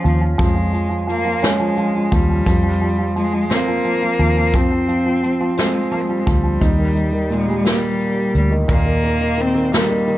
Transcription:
Already playing: F3 C#4
0.04 D#2 F3, closed hi-hat
0.21 F3
0.38 F2 F3 G#3, kick, closed hi-hat
0.56 F3
0.73 F3, closed hi-hat
0.89 F3
1.07 F3 A#3, closed hi-hat
1.25 F3
1.42 G#3 C#4, snare, closed hi-hat
1.60 F3
1.77 F3, closed hi-hat
1.94 F3
2.12 D#2 F3 G3, kick, closed hi-hat
2.29 F3
2.46 F2 F3, kick, closed hi-hat
2.64 F3
2.81 F3, closed hi-hat
2.99 F3
3.16 F3 G#3, closed hi-hat
3.33 F3
3.49 A#3 C4, snare, closed hi-hat
3.67 F3
3.84 F3, closed hi-hat
4.02 F3
4.19 D#2 F3, closed hi-hat
4.37 F3
4.54 F2 F3 C4, kick, closed hi-hat
4.71 F3
4.88 F3, closed hi-hat
5.06 F3
5.23 F3, closed hi-hat
5.41 F3
5.57 G#3 C4, snare, closed hi-hat
5.75 F3
5.91 F3 A#3, closed hi-hat
6.01 G#3
6.09 F3 G3
6.19 G#3
6.27 D2 F3 G3, kick, closed hi-hat
6.44 F3
6.61 D#2 D#4, kick, closed hi-hat
6.78 D#3
6.95 D#3, closed hi-hat
7.12 D#3
7.30 A#2 G#3, closed hi-hat
7.48 G3
7.65 G3 A#3, snare, closed hi-hat
7.99 closed hi-hat
8.35 D2 G3, closed hi-hat
8.51 D#3
8.68 D#2 A#2 A#3, kick, closed hi-hat
8.86 D#3
9.04 D#3, closed hi-hat
9.21 D#3
9.38 D#3 C4, closed hi-hat
9.55 D#3
9.72 G3 A#3, snare, closed hi-hat
9.89 D#3
10.07 D#3, closed hi-hat

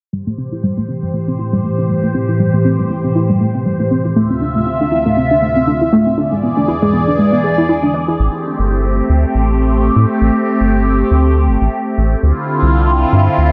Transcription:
0.13 A2 E3 G3 G4 C5
0.27 A3
0.38 C4
0.52 E4
0.63 G3
0.77 A3
0.88 C4
1.03 G3
1.14 A3
1.28 C4
1.39 E4
1.53 G3
1.64 A3
1.78 C4
1.89 G3
2.03 A3
2.14 C4
2.29 E4
2.40 G3
2.54 A3
2.65 C4
2.79 G3
2.90 A3
3.04 C4
3.15 E4
3.29 G3
3.41 A3
3.55 C4
3.66 G3
3.80 A3
3.91 C4
4.05 E4
4.16 D2 C3 A3 F4 E5
4.30 C4
4.41 D4
4.56 A3
4.67 C4
4.81 D4
4.92 E4
5.06 A3
5.17 C4
5.31 D4
5.42 A3
5.56 C4
5.67 D4
5.81 E4
5.93 A3
6.07 C4
6.18 E2 E3 D4 G#4 D5
6.32 G#3
6.43 B3
6.57 D4
6.68 E4
6.82 G#3
6.93 B3
7.08 D4
7.19 G#3
7.33 B3
7.44 G#4
7.58 E4
7.69 E4
7.83 D4
7.94 D5
8.08 E4
8.19 A1 A3 C4 G4
8.59 G1
9.09 D2
9.34 A1
9.96 A2
10.21 A1
10.60 G1
11.11 D2
11.47 G1
11.61 A1
11.98 A1
12.23 D2 D3 C4 E4 F4
12.62 C2
13.12 G2
13.38 D2

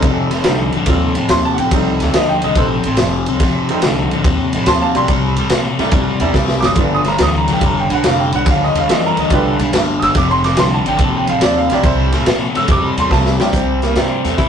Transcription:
Already playing: G3 A3 C4 D#4 C5
0.02 F1 F2 C3, kick, ride
0.31 F2 C3, snare, ride
0.44 C2 F2 D3 G3 A3 C4 D#4, snare, ride
0.72 A1 F2 D3, ride
0.86 D#2 F2 C3 G3 A3 C4 F4, kick, ride
1.15 A1 F2 C3, ride
1.29 D#2 F2 C3 C6, snare, ride
1.45 A5
1.55 A1 F#5, ride
1.59 F2 C3 G5
1.71 C2 F2 C3 G3 A3 C4 D#4, kick, ride
2.00 D2 F2 C3, snare, ride
2.14 D#2 F2 D3 D#5, snare, ride
2.29 G5
2.42 C2 F2 D3 D#5, ride
2.55 A#1 F2 C3 A4 C5, kick, ride
2.84 A1 F2 C3, ride
2.97 F1 F2 C3, snare, ride
3.26 C2 F2 C3, ride
3.40 F1 F2 C3, kick, snare, ride
3.69 F2 C3 G3 A3 C4 D#4, ride
3.82 C2 F2 D3, snare, ride
4.11 A1 F2 D3, ride
4.24 D#2 F2 C3, kick, ride
4.53 A1 F2 C3, ride
4.63 D#2 B5, snare, ride
4.67 F2 C3 A5 C6
4.81 F5 A5
4.95 B1 F2 C3 G3 A#3 D4 G4 C6, ride
5.08 C2 C3 G3, kick, ride
5.36 A2 C3 G3, ride
5.50 A#2 C3 A3, snare, ride
5.78 G2 C3 G3 A3 A#3 D4 E4, snare, ride
5.91 F2 C3 G3, kick, ride
6.20 E2 C3 G3 A#3 D4 E4, ride
6.34 C2 C3 G3, kick, snare
6.48 snare
6.61 F#1 C3 G3 D6, snare
6.65 D#6
6.75 G1 G2 D3 A3 B3 D4 F4, kick, ride
6.95 D#6
7.04 G2 D3 A#5, snare, ride
7.18 D2 G2 E3, snare, ride
7.23 D#6
7.38 A#5
7.48 B1 G2 E3, snare, ride
7.53 G5
7.61 F1 G2 D3, kick, ride
7.66 A#5
7.80 G5
7.90 B1 G2 D3, ride
7.94 F#5
8.04 F1 G2 D3, snare, ride
8.08 F5
8.20 G5
8.32 B1 G2 D3 F#5, ride
8.46 D2 G2 D3, kick, snare, ride
8.50 F5
8.64 D#5
8.74 E2 G2 D3, ride
8.79 F5
8.88 F2 G2 E3 A3 B3 D4 F4 D#5, snare, ride
9.06 A#4
9.17 D2 G2 E3 D#5, ride
9.30 C2 G2 D3 A3 B3 D4 F4 G4 B4, kick, ride
9.59 B1 G2 D3, ride
9.73 G1 G2 D3, snare, ride
9.99 G1 G2 D3 D#6 E6, snare, ride
10.15 F1 F2 C3 D6, kick, snare, ride
10.31 C6
10.44 F2 C3 D6, snare, ride
10.57 C2 F2 D3 C6, snare, ride
10.74 A5
10.86 A1 F2 D3 G5, ride
10.99 D#2 F2 C3, kick, ride
11.04 A5
11.17 G5
11.27 A1 F2 C3 F5, ride
11.41 D#2 F2 C3 D5, snare, ride
11.58 F5
11.70 A#1 F2 C3 A#3 D4 E4 G4 D5, snare, ride
11.83 C2 C3 G3 E4 C5, kick, ride
12.12 A2 C3 G3, snare, ride
12.26 A#2 C3 A3, snare, ride
12.55 G2 C3 A3 E6, snare, ride
12.68 F2 C3 G3 D6, kick, ride
12.97 E2 C3 G3 C6, ride
13.11 C2 C3 G3 A5, kick, snare
13.26 snare
13.39 G2 C3 G3 A#3 D4 E4 G4 G5, snare
13.53 C2 C3 G3 C4, kick, snare, closed hi-hat
13.82 C3 G3 A#3, snare, closed hi-hat
13.95 G2 C3 G3 A3 A#3 C4 D4 E4, snare, closed hi-hat
14.24 E2 C3 A3, snare, closed hi-hat
14.38 A#1 C3 G3 E4, kick, closed hi-hat

